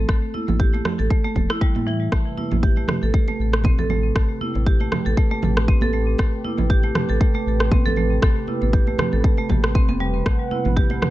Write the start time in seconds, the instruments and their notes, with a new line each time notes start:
0.09 analog synth bass A1, marimba A3, kick, cross-stick, muted conga
0.34 marimba E4, high conga
0.48 analog synth bass A1, muted conga, high conga, low conga
0.60 marimba G4, kick
0.74 marimba A3, muted conga
0.85 marimba A3, cross-stick, low conga
0.99 analog synth bass A1, marimba A4, muted conga
1.10 marimba A3, kick
1.24 marimba A3, muted conga
1.35 analog synth bass E1, marimba A3, kick, high conga, low conga
1.50 marimba E4, cross-stick
1.61 marimba G3, kick, muted conga
1.75 analog synth bass A2, marimba E4, high conga
1.87 marimba E3, muted conga
2.12 analog synth bass A1, analog synth pad C3 G4 B4, marimba A3, kick, cross-stick, muted conga
2.38 marimba E4, high conga
2.51 analog synth bass A1, muted conga, high conga, low conga
2.63 marimba G4, kick
2.77 marimba A3, muted conga
2.88 marimba A3, cross-stick, mid tom, low conga
3.02 analog synth bass A1, marimba A4, muted conga
3.14 marimba A3, kick
3.28 marimba A3, muted conga
3.39 analog synth bass A1
3.53 cross-stick
3.64 marimba C4, kick, mid tom, muted conga, high conga
3.78 analog synth bass A1, marimba A4, low conga
3.90 marimba A3, muted conga, low conga
4.15 analog synth bass A1, marimba A3, kick, cross-stick, muted conga
4.41 marimba E4, high conga
4.55 analog synth bass A1, muted conga, high conga
4.66 marimba G4, kick
4.80 marimba A3, muted conga
4.92 marimba A3, cross-stick, mid tom, low conga
5.06 analog synth bass A1, marimba A4, muted conga
5.17 marimba A3, kick
5.31 marimba A3, muted conga
5.42 analog synth bass A1, mid tom, low conga
5.57 cross-stick
5.68 marimba C4, kick, muted conga
5.81 analog synth bass A1, marimba A4, high conga
5.93 marimba A3, muted conga
6.18 analog synth bass A1, marimba A3, kick, cross-stick, muted conga
6.45 marimba E4, high conga
6.58 analog synth bass A1, muted conga, high conga, low conga
6.70 marimba G4, kick
6.83 marimba A3, muted conga
6.95 marimba A3, cross-stick, mid tom, low conga
7.09 analog synth bass A1, marimba A4, muted conga
7.21 marimba A3, kick
7.34 marimba A3, muted conga
7.46 analog synth bass A1
7.60 cross-stick
7.71 marimba C4, kick, mid tom, muted conga, high conga
7.86 analog synth bass A1, marimba A4, low conga
7.96 marimba A3, muted conga, low conga
8.22 analog synth bass A1, marimba A3, kick, cross-stick, muted conga
8.47 marimba E4, high conga
8.62 analog synth bass A1, muted conga, high conga
8.73 marimba G4, kick
8.87 marimba A3, muted conga
8.98 marimba A3, cross-stick, mid tom, low conga
9.12 analog synth bass A1, marimba A4, muted conga
9.24 marimba A3, kick
9.37 marimba A3, muted conga
9.49 analog synth bass A1, marimba G4, kick, mid tom, high conga, low conga
9.64 cross-stick
9.75 marimba C4, kick, muted conga
9.89 analog synth bass E1, marimba C4, high conga
10.00 marimba G3, muted conga
10.26 analog synth bass A1, marimba A3, analog synth pad F#5, kick, cross-stick, muted conga
10.51 marimba E4, high conga
10.65 analog synth bass A1, muted conga, high conga, low conga
10.77 marimba G4, kick
10.90 marimba A3, muted conga
11.02 marimba A3, cross-stick, mid tom, low conga